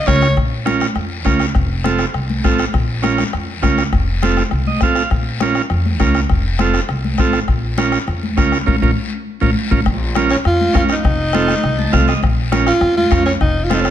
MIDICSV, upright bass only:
0, 0, Header, 1, 2, 480
1, 0, Start_track
1, 0, Key_signature, -5, "minor"
1, 0, Tempo, 296443
1, 596, Time_signature, 4, 2, 24, 8
1, 22513, End_track
2, 0, Start_track
2, 0, Title_t, "Upright bass"
2, 0, Program_c, 0, 32
2, 116, Note_on_c, 0, 37, 91
2, 500, Note_off_c, 0, 37, 0
2, 592, Note_on_c, 0, 34, 87
2, 1361, Note_off_c, 0, 34, 0
2, 1542, Note_on_c, 0, 41, 83
2, 2032, Note_off_c, 0, 41, 0
2, 2032, Note_on_c, 0, 37, 83
2, 2417, Note_off_c, 0, 37, 0
2, 2511, Note_on_c, 0, 29, 91
2, 3280, Note_off_c, 0, 29, 0
2, 3468, Note_on_c, 0, 36, 79
2, 3951, Note_off_c, 0, 36, 0
2, 3951, Note_on_c, 0, 33, 83
2, 4336, Note_off_c, 0, 33, 0
2, 4430, Note_on_c, 0, 34, 86
2, 5199, Note_off_c, 0, 34, 0
2, 5400, Note_on_c, 0, 41, 79
2, 5871, Note_off_c, 0, 41, 0
2, 5871, Note_on_c, 0, 37, 73
2, 6255, Note_off_c, 0, 37, 0
2, 6354, Note_on_c, 0, 29, 87
2, 7121, Note_off_c, 0, 29, 0
2, 7312, Note_on_c, 0, 36, 79
2, 7788, Note_off_c, 0, 36, 0
2, 7788, Note_on_c, 0, 33, 77
2, 8173, Note_off_c, 0, 33, 0
2, 8276, Note_on_c, 0, 34, 87
2, 9042, Note_off_c, 0, 34, 0
2, 9234, Note_on_c, 0, 41, 80
2, 9710, Note_off_c, 0, 41, 0
2, 9710, Note_on_c, 0, 37, 75
2, 10095, Note_off_c, 0, 37, 0
2, 10192, Note_on_c, 0, 29, 85
2, 10960, Note_off_c, 0, 29, 0
2, 11151, Note_on_c, 0, 36, 88
2, 11630, Note_off_c, 0, 36, 0
2, 11630, Note_on_c, 0, 33, 80
2, 12015, Note_off_c, 0, 33, 0
2, 12109, Note_on_c, 0, 34, 85
2, 12879, Note_off_c, 0, 34, 0
2, 13075, Note_on_c, 0, 41, 81
2, 13551, Note_off_c, 0, 41, 0
2, 13551, Note_on_c, 0, 37, 73
2, 13937, Note_off_c, 0, 37, 0
2, 14044, Note_on_c, 0, 34, 85
2, 14219, Note_off_c, 0, 34, 0
2, 14285, Note_on_c, 0, 34, 87
2, 14459, Note_off_c, 0, 34, 0
2, 15241, Note_on_c, 0, 34, 86
2, 15417, Note_off_c, 0, 34, 0
2, 15722, Note_on_c, 0, 34, 95
2, 15898, Note_off_c, 0, 34, 0
2, 15967, Note_on_c, 0, 34, 88
2, 16731, Note_off_c, 0, 34, 0
2, 16922, Note_on_c, 0, 41, 85
2, 17304, Note_off_c, 0, 41, 0
2, 17404, Note_on_c, 0, 41, 80
2, 17785, Note_off_c, 0, 41, 0
2, 17883, Note_on_c, 0, 29, 92
2, 18649, Note_off_c, 0, 29, 0
2, 18835, Note_on_c, 0, 36, 81
2, 19220, Note_off_c, 0, 36, 0
2, 19322, Note_on_c, 0, 36, 86
2, 19704, Note_off_c, 0, 36, 0
2, 19796, Note_on_c, 0, 34, 91
2, 20564, Note_off_c, 0, 34, 0
2, 20740, Note_on_c, 0, 41, 89
2, 21131, Note_off_c, 0, 41, 0
2, 21232, Note_on_c, 0, 41, 85
2, 21618, Note_off_c, 0, 41, 0
2, 21706, Note_on_c, 0, 29, 92
2, 22478, Note_off_c, 0, 29, 0
2, 22513, End_track
0, 0, End_of_file